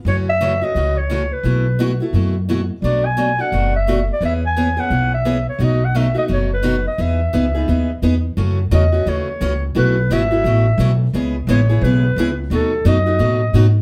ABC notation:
X:1
M:4/4
L:1/16
Q:"Swing" 1/4=173
K:Bmix
V:1 name="Clarinet"
c2 e4 d4 c4 B2- | B6 z8 z2 | =d2 g4 f4 e4 d2 | e2 g4 f4 e4 c2 |
d2 f2 e2 d2 c2 B4 d2 | e12 z4 | z4 d4 c6 z2 | B4 e8- e2 z2 |
z4 c4 B6 z2 | A4 d8- d2 z2 |]
V:2 name="Steel-string acoustic guitar"
[C,E,A,CF]2 z2 [C,E,A,CF] z [A,CF]2 [C,E,A,CF]2 z2 [C,E,A,CF] z3 | [B,,E,A,EF]2 z2 [B,,E,A,EF] z [A,EF]2 [B,,E,A,EF]2 z2 [B,,E,A,EF] z3 | [B,,F,A,=DF]2 z2 [B,,F,A,DF] z [A,DF]2 [B,,F,A,DF]2 z2 [B,,F,A,DF] z3 | [E,B,CG]2 z2 [E,B,CG] z [B,CG]2 [E,B,CG]2 z2 [E,B,CG] z3 |
[B,,F,A,DF]2 z2 [B,,F,A,DF] z [A,DF]2 [B,,F,A,DF]2 z2 [B,,F,A,DF] z3 | [E,B,DG]2 z2 [E,B,DG] z [B,DG]2 [E,B,DG]2 z2 [E,B,DG] z3 | [C,E,A,CF]2 z2 [C,E,A,CF] z [A,CF]2 [C,E,A,CF]2 z2 [C,E,A,CF] z3 | [B,,E,A,EF]2 z2 [B,,E,A,EF] z [A,EF]2 [B,,E,A,EF]2 z2 [B,,E,A,EF] z3 |
[C,G,B,EG]2 z2 [C,G,B,EG] z [B,EG]2 [C,G,B,EG]2 z2 [C,G,B,EG] z3 | [B,,F,A,DF]2 z2 [B,,F,A,DF] z [A,DF]2 [B,,F,A,DF]2 z2 [B,,F,A,DF] z3 |]
V:3 name="Upright bass" clef=bass
F,,8 C,,8 | B,,,8 F,,8 | B,,,8 F,,,8 | E,,8 B,,,8 |
B,,,8 F,,,8 | E,,4 C,,4 D,,4 E,,4 | F,,4 E,,4 D,,4 C,,4 | B,,,4 G,,,4 A,,,4 B,,,4 |
C,,4 A,,,4 B,,,4 C,,4 | D,,4 F,,4 A,,4 G,,4 |]